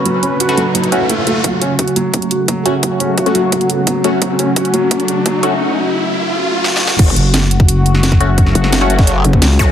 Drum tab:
CC |------------------------------------------------|------------------------------------------------|------------------------------------------------|------------------------------------------------|
HH |x-----x-----x--x--x-----x--x--x-----x-----x-----|x-----x-----x--x--x-----x--x--x-----x-----x-----|x-----x-----x--x--x-----x--x--x-----x-----x-----|x-----x-----x--x--x-----x--x--x-----x-----x-----|
SD |------------------------------------------------|------------------------------------------------|------------------------------------------------|------------------------------------------------|
BD |------------------------------------------------|o-----------o-----------o-----------o-----------|o-----------o-----------o-----------o-----------|o-----------o-----------o-----------o-----------|

CC |------------------------------------------------|x-----------------------------------------------|------------------------------------------------|
HH |------------------------------------------------|x-----x-----x-----x-----x-----x-----x-----x-----|x-----x-----x-----x-----x-----x-----x-----x-----|
SD |------------------------------------o---o---o---|------------o--------------------o--o--o--------|---o-----o--o--o-----o--------------o-----o-----|
BD |------------------------------------------------|o--------------------o-----------------o--------|o--------------------o-----------o--------o-----|